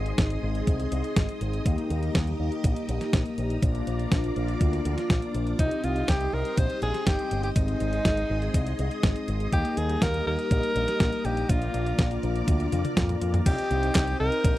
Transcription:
Already playing: G#1 C4 D#4 G#4 D#5 C6 D#6
0.06 closed hi-hat
0.18 G#1, kick, snare, closed hi-hat
0.30 closed hi-hat
0.43 G#1 C4 D#4 G#4 D#5
0.55 closed hi-hat
0.67 C2, kick, closed hi-hat
0.80 closed hi-hat
0.92 C2, closed hi-hat
1.04 closed hi-hat
1.16 G#1, kick, snare, closed hi-hat
1.29 closed hi-hat
1.41 G#1, closed hi-hat
1.53 closed hi-hat
1.66 D#2 A#3 D#4 G4 D#5 A#5, kick, closed hi-hat
1.78 closed hi-hat
1.90 D#2, closed hi-hat
2.03 closed hi-hat
2.15 D#2, kick, snare, closed hi-hat
2.27 closed hi-hat
2.40 D#2 A#3 D#4 G4 D#5
2.52 closed hi-hat
2.64 A#1, kick, closed hi-hat
2.76 closed hi-hat
2.89 A#1, closed hi-hat
3.01 snare, closed hi-hat
3.13 A#1, kick, snare, closed hi-hat
3.26 closed hi-hat
3.38 A#1, closed hi-hat
3.50 closed hi-hat
3.62 A#1 A#3 D4 F4 D5 D6, kick, closed hi-hat
3.75 closed hi-hat
3.87 A#1, closed hi-hat
3.99 closed hi-hat
4.12 A#1, kick, snare, closed hi-hat
4.24 closed hi-hat
4.36 A#1 A#3 D4 F4 D5, closed hi-hat
4.48 closed hi-hat
4.61 D2, kick, closed hi-hat
4.73 closed hi-hat
4.85 D2, closed hi-hat
4.98 snare, closed hi-hat
5.10 A#1, kick, snare, closed hi-hat
5.22 closed hi-hat
5.34 A#1, closed hi-hat
5.47 closed hi-hat
5.59 C2 C4 D#4 G4 D#5 C6 D#6, kick, closed hi-hat
5.71 closed hi-hat
5.84 C2 F4, closed hi-hat
5.96 closed hi-hat
6.08 C2 G4, kick, snare, closed hi-hat
6.20 closed hi-hat
6.33 C2 C4 D#4 G4 A#4 D#5
6.45 closed hi-hat
6.57 A#1 C5, kick, closed hi-hat
6.70 closed hi-hat
6.82 A#1 G#4, closed hi-hat
6.94 snare, closed hi-hat
7.07 G1 G4, kick, snare, closed hi-hat
7.19 closed hi-hat
7.31 G1, closed hi-hat
7.43 G4, closed hi-hat
7.56 G#1 C4 D#4 G#4 D#5, kick, closed hi-hat
7.68 closed hi-hat
7.80 G#1, closed hi-hat
7.93 closed hi-hat
8.05 G#1, kick, snare, closed hi-hat
8.17 closed hi-hat
8.30 G#1 C4 D#4 G#4 D#5
8.42 closed hi-hat
8.54 C2, kick, closed hi-hat
8.67 closed hi-hat
8.79 C2, closed hi-hat
8.91 closed hi-hat
9.03 G#1, kick, snare, closed hi-hat
9.16 closed hi-hat
9.28 G#1, closed hi-hat
9.40 closed hi-hat
9.52 D#2 A#3 D#4 G4 D#5 A#5, kick, closed hi-hat
9.65 closed hi-hat
9.77 D#2 G#4, closed hi-hat
9.89 closed hi-hat
10.02 D#2 A#4, kick, snare, closed hi-hat
10.14 closed hi-hat
10.26 D#2 A#3 D#4 G4 A#4 D#5
10.39 closed hi-hat
10.51 A#1, kick, closed hi-hat
10.63 closed hi-hat
10.76 A#1, closed hi-hat
10.88 snare, closed hi-hat
11.00 A#1, kick, snare, closed hi-hat
11.12 closed hi-hat
11.25 A#1 G4, closed hi-hat
11.37 closed hi-hat
11.49 A#1 A#3 D4 F4 D5 D6, kick, closed hi-hat
11.62 closed hi-hat
11.74 A#1, closed hi-hat
11.86 closed hi-hat
11.98 A#1, kick, snare, closed hi-hat
12.11 closed hi-hat
12.23 A#1 A#3 D4 F4 D5, closed hi-hat
12.36 closed hi-hat
12.48 D2, kick, closed hi-hat
12.60 closed hi-hat
12.72 F2, closed hi-hat, high tom
12.85 closed hi-hat, high tom
12.97 F2, kick, snare, closed hi-hat, mid tom
13.09 closed hi-hat, mid tom
13.22 F2, closed hi-hat
13.34 closed hi-hat, mid tom
13.46 C2 C4 D#4 G4 C5 D#5 G5 D#6, kick, closed hi-hat, crash
13.58 closed hi-hat
13.71 C2, closed hi-hat
13.83 closed hi-hat
13.95 C2, kick, snare, clap, closed hi-hat
14.07 closed hi-hat
14.20 C2 C4 D#4 G4 A#4 D#5
14.32 closed hi-hat
14.44 A#1, kick, closed hi-hat

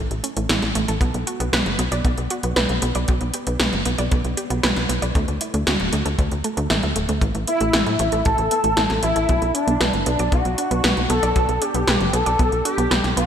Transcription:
0.11 A1, closed hi-hat
0.24 C#4, closed hi-hat
0.37 A1 A3, closed hi-hat
0.49 A1 E4, snare, closed hi-hat
0.62 A1, snare, closed hi-hat
0.75 A1 A3, closed hi-hat
0.88 A1 A4, closed hi-hat
1.01 B1 B3, kick, closed hi-hat
1.14 B1, closed hi-hat
1.27 F#4, closed hi-hat
1.40 B1 B3, closed hi-hat
1.53 B1 B4, snare, closed hi-hat
1.66 F#1, closed hi-hat
1.79 B1 B3, closed hi-hat
1.92 B1 D5, closed hi-hat
2.05 B1 B3, kick, closed hi-hat
2.18 B1, closed hi-hat
2.30 F#4, closed hi-hat
2.43 B1 B3, closed hi-hat
2.56 B1 B4, snare, closed hi-hat
2.69 B1, closed hi-hat
2.82 B1 B3, closed hi-hat
2.95 B1 D5, closed hi-hat
3.08 B1 B3, kick, closed hi-hat
3.21 B1, closed hi-hat
3.34 G4, closed hi-hat
3.47 B1 B3, closed hi-hat
3.60 B1 B4, snare, closed hi-hat
3.73 F#1, closed hi-hat
3.85 B1 B3, closed hi-hat
3.98 B1 D5, closed hi-hat
4.11 B1 B3, kick, closed hi-hat
4.25 B1, closed hi-hat
4.37 G4, closed hi-hat
4.50 B1 B3, closed hi-hat
4.63 B1 B4, snare, closed hi-hat
4.76 B1, snare, closed hi-hat
4.89 B1 B3, closed hi-hat
5.02 B1 D5, closed hi-hat
5.15 D2 A3, kick, closed hi-hat
5.28 D2, closed hi-hat
5.41 E4, closed hi-hat
5.54 D2 A3, closed hi-hat
5.67 D2 F#4, snare, closed hi-hat
5.80 D1, closed hi-hat
5.93 D2 A3, closed hi-hat
6.06 D2 A4, closed hi-hat
6.19 D2 A3, kick, closed hi-hat
6.31 D2, closed hi-hat
6.44 A3, closed hi-hat
6.57 D2 A3, closed hi-hat
6.70 A1 E5, snare, closed hi-hat
6.83 D2 E4, closed hi-hat
6.96 D1 A3, closed hi-hat
7.09 D2 A3, closed hi-hat
7.21 A1 A3, kick, closed hi-hat
7.35 A1, closed hi-hat
7.47 B3 E4, closed hi-hat
7.61 A1 A3, closed hi-hat
7.73 A1 E4, snare, closed hi-hat
7.86 A2, closed hi-hat
7.99 A1 A3 E4, closed hi-hat
8.12 A1 A4, closed hi-hat
8.25 A1 A3 A4, kick, closed hi-hat
8.38 A1, closed hi-hat
8.51 B3, closed hi-hat
8.64 A1 A3, closed hi-hat
8.77 A1 E4, snare, closed hi-hat
8.90 A1, snare, closed hi-hat
9.03 A1 A3 E4, closed hi-hat
9.16 A1 A4, closed hi-hat
9.29 B1 B3, kick, closed hi-hat
9.42 B1, closed hi-hat
9.54 D4, closed hi-hat
9.67 B1 B3, closed hi-hat
9.80 B1 B4, snare, closed hi-hat
9.93 F#1, closed hi-hat
10.06 B1 B3 D4, closed hi-hat
10.19 B1 D5, closed hi-hat
10.32 B1 B3 F#4, kick, closed hi-hat
10.45 B1, closed hi-hat
10.58 D4, closed hi-hat
10.71 B1 B3, closed hi-hat
10.84 B1 B4, snare, closed hi-hat
10.97 B1, closed hi-hat
11.10 B1 B3 A4, closed hi-hat
11.23 B1 D5, closed hi-hat
11.36 B1 B3, kick, closed hi-hat
11.49 B1, closed hi-hat
11.62 D4 G4, closed hi-hat
11.74 B1 B3, closed hi-hat
11.87 B1 B4, snare, closed hi-hat
12.00 F#1, closed hi-hat
12.13 B1 B3 A4, closed hi-hat
12.26 B1 D5, closed hi-hat
12.39 B1 B3, kick, closed hi-hat
12.52 B1, closed hi-hat
12.65 D4 G4, closed hi-hat
12.78 B1 B3, closed hi-hat
12.91 B1 B4, snare, closed hi-hat
13.04 B1, snare, closed hi-hat
13.16 B1 B3 F#4, closed hi-hat

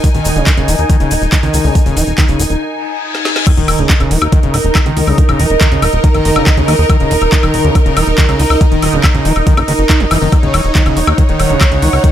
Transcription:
Already playing: D#4 A#4 D#5 G#5
0.04 D#3, kick, closed hi-hat, shaker
0.15 D#1 D#3, closed hi-hat, shaker
0.25 D#1, open hi-hat, shaker
0.36 D#1 C#3, closed hi-hat, shaker
0.46 D#3, kick, clap, closed hi-hat, shaker
0.57 D#1 C#3, closed hi-hat, shaker
0.68 D#1 E3, open hi-hat, shaker
0.78 D#2, closed hi-hat, shaker
0.90 D#3, kick, closed hi-hat, shaker
1.00 D#1 C#3, closed hi-hat, shaker
1.11 D#1 D#3, open hi-hat, shaker
1.22 D#1, closed hi-hat, shaker
1.32 D#3, kick, clap, closed hi-hat, shaker
1.43 C#2 D#3, closed hi-hat, shaker
1.54 C#2, open hi-hat, shaker
1.64 C#2 C#3, shaker
1.75 D#3, kick, closed hi-hat, shaker
1.86 D#1 C#3, closed hi-hat, shaker
1.97 D#1 E3, open hi-hat, shaker
2.07 D#1, closed hi-hat, shaker
2.18 D#3, kick, clap, closed hi-hat, shaker
2.28 D#1 C#3, closed hi-hat, shaker
2.40 D#1 D#3, open hi-hat, shaker
2.50 D#1, closed hi-hat, shaker
2.61 reverse cymbal
3.15 snare
3.25 snare
3.36 snare
3.47 D#3 D#4 D#5, kick, closed hi-hat, crash, sub drop, high woodblock
3.54 D#1 D#3 A#4, closed hi-hat
3.68 D#1, open hi-hat, high woodblock
3.79 D#1 C#3, closed hi-hat
3.90 D#3, kick, clap, closed hi-hat
4.00 D#1 C#3, closed hi-hat, high woodblock
4.11 D#1 E3, open hi-hat
4.22 D#2, closed hi-hat, high woodblock
4.32 D#3, kick, closed hi-hat
4.43 D#1 C#3, closed hi-hat
4.54 D#1 D#3, open hi-hat, high woodblock
4.65 D#1, closed hi-hat
4.75 D#3, kick, clap, closed hi-hat, high woodblock
4.86 C#2 D#3, closed hi-hat
4.97 C#2, open hi-hat
5.07 C#2 C#3, high woodblock
5.18 D#3, kick, closed hi-hat
5.29 D#1 C#3, closed hi-hat, high woodblock
5.39 D#1 E3, open hi-hat
5.50 D#1, closed hi-hat
5.61 D#3, kick, clap, closed hi-hat, high woodblock
5.72 D#1 C#3, closed hi-hat
5.82 D#1 D#3, open hi-hat, high woodblock
5.93 D#1, closed hi-hat
6.04 D#3, kick, closed hi-hat
6.14 F#1 D#3, closed hi-hat, high woodblock
6.25 F#1, open hi-hat
6.36 F#1 C#3, closed hi-hat, high woodblock
6.47 D#3, kick, clap, closed hi-hat
6.57 D#2 C#3, closed hi-hat
6.68 D#2 E3, open hi-hat, high woodblock
6.79 D#2
6.90 D#3, kick, closed hi-hat, high woodblock
7.00 D#1 C#3, closed hi-hat
7.11 D#1 D#3, open hi-hat
7.22 D#1, closed hi-hat, high woodblock
7.32 D#3, kick, clap, closed hi-hat
7.43 D#1 D#3, closed hi-hat, high woodblock
7.54 D#1, open hi-hat
7.64 D#2 C#3, closed hi-hat
7.75 D#3, kick, closed hi-hat, high woodblock
7.86 D#1 C#3, closed hi-hat
7.97 D#1 E3, open hi-hat, high woodblock
8.07 D#1, closed hi-hat
8.18 D#3, kick, clap, closed hi-hat
8.29 C#2 C#3, closed hi-hat, high woodblock
8.40 C#2 D#3, open hi-hat
8.50 C#2, high woodblock
8.61 D#3, kick, closed hi-hat
8.72 D#1 D#3, closed hi-hat
8.82 D#1, open hi-hat, high woodblock
8.93 D#1 C#3, closed hi-hat
9.04 D#3, kick, clap, closed hi-hat, high woodblock
9.15 D#1 C#3, closed hi-hat
9.25 D#1 E3, open hi-hat
9.36 D#1, closed hi-hat, high woodblock
9.47 D#3, kick, closed hi-hat
9.57 F#1 C#3, closed hi-hat, high woodblock
9.68 F#1 D#3, open hi-hat
9.79 F#1, closed hi-hat
9.90 D#4, kick, clap, closed hi-hat, high woodblock
10.00 F#1 E3, closed hi-hat
10.11 F#1 E3, open hi-hat, high woodblock
10.22 F#1 D#3
10.32 D#3 F#5, kick, closed hi-hat, high woodblock
10.40 D#1 C#3 C#5, closed hi-hat
10.54 D#1 E3, open hi-hat, high woodblock
10.65 D#1, closed hi-hat
10.75 D#3, kick, clap, closed hi-hat
10.86 D#1 C#3, closed hi-hat, high woodblock
10.97 D#1 D#3, open hi-hat
11.07 D#2, closed hi-hat, high woodblock
11.18 D#3, kick, closed hi-hat
11.29 D#1 D#3, closed hi-hat
11.40 D#1, open hi-hat, high woodblock
11.50 D#1 C#3, closed hi-hat
11.61 D#3, kick, clap, closed hi-hat, high woodblock
11.72 C#2 C#3, closed hi-hat
11.82 C#2 E3, open hi-hat
11.93 C#2, high woodblock
12.04 D#3, kick, closed hi-hat

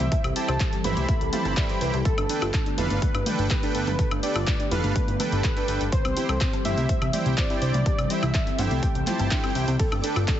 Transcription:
Already playing: E3 G3 C4 E5
0.00 C2 C4, closed hi-hat, mid tom, high conga
0.12 A4 E5, kick, closed hi-hat, high woodblock
0.24 C2 G4, closed hi-hat, high woodblock
0.36 E4 G4 C5 G5 A5, open hi-hat
0.48 C2 C5, closed hi-hat, high woodblock
0.60 G4, kick, clap, closed hi-hat, high woodblock
0.73 G4, closed hi-hat
0.84 G1 E4 G4 B4 C5 E5 B5, mid tom, open hi-hat
0.97 C2 G4, closed hi-hat, high conga
1.09 E5, kick, closed hi-hat, high woodblock
1.21 C2 G4, closed hi-hat
1.33 E4 G4 C5 F5 A5 B5, mid tom, open hi-hat, high conga
1.45 G1 G4, closed hi-hat, high woodblock
1.57 E4 G4 C5 D5 E5, kick, clap, closed hi-hat
1.69 E4 G4 C5 G5, closed hi-hat
1.81 C2 E4 G4 B4 C5 G5, open hi-hat
1.94 C2 G4, closed hi-hat, high woodblock
2.05 D3 A3 B3 G4 A4, kick, closed hi-hat
2.18 G1 D4, closed hi-hat, high woodblock
2.29 D4 A4 B4 G5, open hi-hat
2.42 G1 F4, closed hi-hat, high woodblock
2.54 D4, kick, clap, closed hi-hat, high woodblock
2.66 D4, closed hi-hat
2.78 F1 D4 E4 A4 B4 F5, mid tom, open hi-hat
2.90 G1 D4, closed hi-hat, high conga
3.02 A4, kick, closed hi-hat, high woodblock
3.15 G1 D4, closed hi-hat, high woodblock
3.26 D4 A4 B4 G5, mid tom, open hi-hat, high conga
3.39 G1 D4, closed hi-hat
3.50 A4 B4, kick, clap, closed hi-hat, high woodblock
3.63 D4 A4 B4 G5, closed hi-hat
3.75 G1 D4 A4 B4 G5, open hi-hat
3.87 G1 D4, closed hi-hat, mid tom, high conga, high woodblock
3.99 A4, kick, closed hi-hat
4.11 G1 D4, closed hi-hat, high woodblock
4.23 D4 A4 B4 D5 G5, open hi-hat
4.36 G1 F4, closed hi-hat, high woodblock
4.47 D4, kick, clap, closed hi-hat
4.60 D4, closed hi-hat
4.71 F1 D4 E4 A4 B4 F5, mid tom, open hi-hat
4.84 G1 D4, closed hi-hat, high conga, high woodblock
4.96 A4, kick, closed hi-hat
5.08 G1 D4, closed hi-hat
5.20 D4 A4 B4 G5, mid tom, open hi-hat, high conga, high woodblock
5.32 G1 D4, closed hi-hat
5.44 A4, kick, clap, closed hi-hat
5.57 D4 A4 B4 G5, closed hi-hat
5.68 G1 D4 A4 B4 G5, open hi-hat, high woodblock
5.81 G1 D4, closed hi-hat
5.92 E3 G3 C4 C5, kick, closed hi-hat
6.05 C2 C4, closed hi-hat, high woodblock
6.17 C4 E4 G4 C5 G5, open hi-hat, high woodblock
6.29 C2 A4, closed hi-hat, high woodblock
6.41 C4, kick, clap, closed hi-hat
6.53 C4, closed hi-hat, high woodblock
6.65 G1 E4 G4 C5 E5, mid tom, open hi-hat
6.77 C2 C4, closed hi-hat, high conga
6.89 C5, kick, closed hi-hat
7.02 C2 C4, closed hi-hat, high woodblock
7.13 E4 G4 C5 D5 G5, mid tom, open hi-hat, high conga
7.26 C2 C4, closed hi-hat
7.37 C5 D5, kick, clap, closed hi-hat
7.50 C4 E4 G4 C5 G5, closed hi-hat, high woodblock
7.62 C2 E4 G4 C5 G5, open hi-hat
7.74 C2 C4, closed hi-hat, mid tom, high conga
7.86 G4 A4, kick, closed hi-hat, high woodblock
7.98 C2 C4, closed hi-hat, high woodblock
8.10 C4 E4 G4 C5 E5 G5, open hi-hat
8.23 C2 E4, closed hi-hat, high woodblock
8.34 C4, kick, clap, closed hi-hat, high woodblock
8.47 C4, closed hi-hat
8.58 G1 D4 E4 G4 C5 E5 G5, mid tom, open hi-hat
8.71 C2 C4, closed hi-hat, high conga
8.83 G4, kick, closed hi-hat, high woodblock
8.95 C2 C4, closed hi-hat
9.07 E4 F4 G4 C5 G5 A5, clap, mid tom, open hi-hat, high conga
9.19 G1 C4, closed hi-hat, high woodblock
9.31 D4 E4 G4 C5 E5, kick, clap, closed hi-hat
9.44 C4 E4 G4 C5 G5, closed hi-hat, high woodblock
9.55 C2 C4 E4 G4 C5 G5, open hi-hat
9.68 C2 C4, closed hi-hat, high woodblock
9.79 D3 A3 B3 G4 A4 D5 D6, kick, closed hi-hat, ride
9.92 G1 D4, closed hi-hat, high woodblock
10.04 D4 A4 B4 G5, open hi-hat
10.16 G1 F4, closed hi-hat, high woodblock
10.28 D4, kick, clap, closed hi-hat, ride, high woodblock

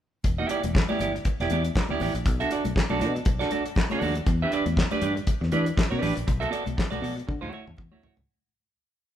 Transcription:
0.24 E1, muted clean electric guitar stroke, kick, closed hi-hat, muted conga
0.38 B3 E4 G4 E5
0.49 B3 E4 G4 D5, closed hi-hat, muted conga
0.64 E1, muted clean electric guitar stroke, closed hi-hat, high conga
0.74 muted clean electric guitar stroke, kick, snare, clap, muted conga
0.89 B3 E4 G4 D5, high conga
0.99 G1 B3 E4 G4 D5, closed hi-hat, muted conga, low conga
1.15 muted clean electric guitar stroke, closed hi-hat
1.25 muted clean electric guitar stroke, kick, closed hi-hat, muted conga
1.40 E1 B3 E4 G4 D5, snare, closed hi-hat
1.50 E2 B3 E4 G4 D5, closed hi-hat, high conga
1.65 muted clean electric guitar stroke, closed hi-hat
1.75 muted clean electric guitar stroke, kick, snare, clap, muted conga
1.89 D2 B3 E4 G4 D5, high conga
2.00 A1 B3 E4 G4 D5, open hi-hat, muted conga, low conga
2.15 A#1, muted clean electric guitar stroke, closed hi-hat
2.25 B1, muted clean electric guitar stroke, kick, closed hi-hat, muted conga
2.40 D4 F#4 A4 E5, closed hi-hat
2.51 D4 F#4 A4 D5, closed hi-hat, muted conga
2.65 B1, muted clean electric guitar stroke, closed hi-hat, high conga
2.76 muted clean electric guitar stroke, kick, snare, clap
2.90 B1 D4 F#4 A4 D5, high conga
3.00 B2 D4 F#4 A4 D5, closed hi-hat, muted conga, low conga
3.16 muted clean electric guitar stroke, closed hi-hat
3.25 B1, muted clean electric guitar stroke, kick, closed hi-hat, muted conga
3.39 D4 F#4 A4 D5, snare, closed hi-hat
3.51 D4 F#4 A4 D5, closed hi-hat, high conga
3.66 muted clean electric guitar stroke, closed hi-hat
3.75 muted clean electric guitar stroke, kick, snare, clap, muted conga
3.90 D4 F#4 A4 D5, closed hi-hat, high conga
4.01 D#2 D4 F#4 A4 D5, open hi-hat, low conga
4.15 muted clean electric guitar stroke, closed hi-hat
4.26 E2, muted clean electric guitar stroke, kick, closed hi-hat
4.42 D4 G4 B4 E5
4.52 D4 G4 B4 D5, closed hi-hat
4.66 E2, muted clean electric guitar stroke, closed hi-hat, high conga
4.77 muted clean electric guitar stroke, kick, snare, clap
4.91 D4 G4 B4 D5, closed hi-hat, high conga
5.02 G2 D4 G4 B4 D5, closed hi-hat, muted conga, low conga
5.16 muted clean electric guitar stroke, closed hi-hat
5.27 kick, closed hi-hat, muted conga
5.41 E2, muted clean electric guitar stroke, snare
5.52 E3 D4 G4 B4 D5, closed hi-hat, muted conga, high conga
5.66 muted clean electric guitar stroke, closed hi-hat
5.77 muted clean electric guitar stroke, kick, snare, clap
5.91 B2 D4 G4 B4 D5, high conga
6.02 A1 D4 G4 B4 D5, open hi-hat, muted conga, low conga
6.17 A#1, muted clean electric guitar stroke, closed hi-hat
6.26 B1, muted clean electric guitar stroke, kick, closed hi-hat, muted conga
6.40 B3 F#4 A4 E5, closed hi-hat
6.51 B3 F#4 A4 D5, closed hi-hat, muted conga
6.66 B1, muted clean electric guitar stroke, closed hi-hat, high conga
6.77 muted clean electric guitar stroke, kick, snare, clap
6.91 B1 B3 F#4 A4 D5, closed hi-hat, high conga
7.01 B2 B3 F#4 A4 D5, open hi-hat, low conga
7.16 muted clean electric guitar stroke, closed hi-hat
7.27 D3, muted clean electric guitar stroke, kick, high tom
7.41 D2 A3 E4 F#4 C#5, high tom
7.52 A3 E4 F#4 C#5, muted conga, high conga
7.67 E2, muted clean electric guitar stroke, mid tom
7.77 E2, muted clean electric guitar stroke, kick, mid tom, muted conga
7.91 D2 A3 E4 F#4 C#5, high conga
8.03 A3 E4 F#4 C#5, floor tom, low conga
8.16 C#2, muted clean electric guitar stroke, floor tom

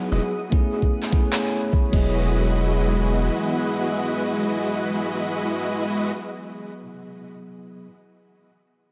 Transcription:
Already playing: F#3 B3 D#4 E4 G#4 F#5 D#6
0.12 E1 G#3 E4 F#4 B4 D#5
0.32 A3 C#5 G#5 B5
0.50 A3 B3 C#4 E4 G#4, kick
0.82 kick
1.03 clap
1.10 A3 B3 C#4 E4 G#4, kick
1.33 clap
1.73 kick
1.90 E1 E3 F#3 G#3 B3 E4 F#4 G#4 B4 D#5 F#5, kick, crash
1.94 E4 G#4

